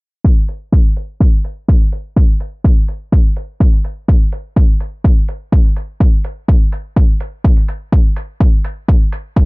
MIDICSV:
0, 0, Header, 1, 2, 480
1, 0, Start_track
1, 0, Tempo, 480000
1, 244, Time_signature, 4, 2, 24, 8
1, 9452, End_track
2, 0, Start_track
2, 0, Title_t, "Drums"
2, 245, Note_on_c, 9, 36, 104
2, 345, Note_off_c, 9, 36, 0
2, 485, Note_on_c, 9, 42, 76
2, 585, Note_off_c, 9, 42, 0
2, 725, Note_on_c, 9, 36, 104
2, 825, Note_off_c, 9, 36, 0
2, 965, Note_on_c, 9, 42, 65
2, 1065, Note_off_c, 9, 42, 0
2, 1205, Note_on_c, 9, 36, 104
2, 1305, Note_off_c, 9, 36, 0
2, 1444, Note_on_c, 9, 42, 71
2, 1544, Note_off_c, 9, 42, 0
2, 1684, Note_on_c, 9, 36, 108
2, 1785, Note_off_c, 9, 36, 0
2, 1808, Note_on_c, 9, 42, 29
2, 1908, Note_off_c, 9, 42, 0
2, 1923, Note_on_c, 9, 42, 64
2, 2023, Note_off_c, 9, 42, 0
2, 2164, Note_on_c, 9, 36, 110
2, 2264, Note_off_c, 9, 36, 0
2, 2403, Note_on_c, 9, 42, 77
2, 2503, Note_off_c, 9, 42, 0
2, 2644, Note_on_c, 9, 36, 110
2, 2744, Note_off_c, 9, 36, 0
2, 2884, Note_on_c, 9, 42, 65
2, 2984, Note_off_c, 9, 42, 0
2, 3124, Note_on_c, 9, 36, 108
2, 3224, Note_off_c, 9, 36, 0
2, 3364, Note_on_c, 9, 42, 74
2, 3464, Note_off_c, 9, 42, 0
2, 3604, Note_on_c, 9, 36, 111
2, 3704, Note_off_c, 9, 36, 0
2, 3728, Note_on_c, 9, 42, 30
2, 3828, Note_off_c, 9, 42, 0
2, 3844, Note_on_c, 9, 42, 66
2, 3944, Note_off_c, 9, 42, 0
2, 4084, Note_on_c, 9, 36, 113
2, 4184, Note_off_c, 9, 36, 0
2, 4324, Note_on_c, 9, 42, 83
2, 4424, Note_off_c, 9, 42, 0
2, 4564, Note_on_c, 9, 36, 114
2, 4664, Note_off_c, 9, 36, 0
2, 4804, Note_on_c, 9, 42, 68
2, 4904, Note_off_c, 9, 42, 0
2, 5044, Note_on_c, 9, 36, 110
2, 5144, Note_off_c, 9, 36, 0
2, 5284, Note_on_c, 9, 42, 76
2, 5384, Note_off_c, 9, 42, 0
2, 5524, Note_on_c, 9, 36, 112
2, 5624, Note_off_c, 9, 36, 0
2, 5648, Note_on_c, 9, 42, 31
2, 5748, Note_off_c, 9, 42, 0
2, 5764, Note_on_c, 9, 42, 69
2, 5864, Note_off_c, 9, 42, 0
2, 6004, Note_on_c, 9, 36, 112
2, 6104, Note_off_c, 9, 36, 0
2, 6244, Note_on_c, 9, 42, 80
2, 6344, Note_off_c, 9, 42, 0
2, 6484, Note_on_c, 9, 36, 108
2, 6584, Note_off_c, 9, 36, 0
2, 6724, Note_on_c, 9, 42, 69
2, 6824, Note_off_c, 9, 42, 0
2, 6964, Note_on_c, 9, 36, 106
2, 7064, Note_off_c, 9, 36, 0
2, 7204, Note_on_c, 9, 42, 74
2, 7304, Note_off_c, 9, 42, 0
2, 7444, Note_on_c, 9, 36, 112
2, 7544, Note_off_c, 9, 36, 0
2, 7568, Note_on_c, 9, 42, 31
2, 7668, Note_off_c, 9, 42, 0
2, 7684, Note_on_c, 9, 42, 67
2, 7784, Note_off_c, 9, 42, 0
2, 7924, Note_on_c, 9, 36, 108
2, 8024, Note_off_c, 9, 36, 0
2, 8164, Note_on_c, 9, 42, 78
2, 8264, Note_off_c, 9, 42, 0
2, 8404, Note_on_c, 9, 36, 108
2, 8504, Note_off_c, 9, 36, 0
2, 8645, Note_on_c, 9, 42, 67
2, 8745, Note_off_c, 9, 42, 0
2, 8884, Note_on_c, 9, 36, 104
2, 8984, Note_off_c, 9, 36, 0
2, 9124, Note_on_c, 9, 42, 72
2, 9224, Note_off_c, 9, 42, 0
2, 9364, Note_on_c, 9, 36, 107
2, 9452, Note_off_c, 9, 36, 0
2, 9452, End_track
0, 0, End_of_file